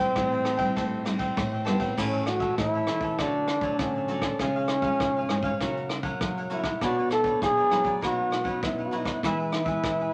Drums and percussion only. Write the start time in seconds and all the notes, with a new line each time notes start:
0.16 kick, cross-stick, ride
0.45 cross-stick, ride
0.59 kick, ride
0.77 kick, cross-stick, ride
1.06 cross-stick, ride
1.19 kick, ride
1.37 kick, cross-stick, ride
1.66 cross-stick, ride
1.80 kick, ride
1.98 kick, cross-stick, crash
2.26 cross-stick, closed hi-hat
2.40 kick
2.58 kick, cross-stick, closed hi-hat
2.87 cross-stick, closed hi-hat
3.01 kick
3.19 kick, cross-stick, closed hi-hat
3.48 cross-stick, closed hi-hat
3.61 kick
3.79 kick, cross-stick, closed hi-hat
4.08 closed hi-hat
4.22 kick, cross-stick
4.39 kick, cross-stick, closed hi-hat
4.68 cross-stick, closed hi-hat
4.82 kick
5.00 kick, cross-stick, closed hi-hat
5.29 cross-stick, closed hi-hat
5.43 kick
5.61 kick, cross-stick, closed hi-hat
5.77 closed hi-hat
5.89 cross-stick, closed hi-hat
6.03 kick, closed hi-hat
6.21 kick, cross-stick, closed hi-hat
6.37 closed hi-hat
6.50 closed hi-hat
6.64 kick, cross-stick
6.81 kick, cross-stick, closed hi-hat
7.11 cross-stick, closed hi-hat
7.24 kick
7.42 kick, cross-stick, closed hi-hat
7.71 cross-stick, closed hi-hat
7.85 kick
8.03 kick, cross-stick, closed hi-hat
8.32 cross-stick, closed hi-hat
8.45 kick
8.63 kick, cross-stick, closed hi-hat
8.92 closed hi-hat
9.05 kick, cross-stick
9.23 kick, cross-stick, closed hi-hat
9.52 cross-stick, closed hi-hat
9.66 kick
9.84 kick, cross-stick, closed hi-hat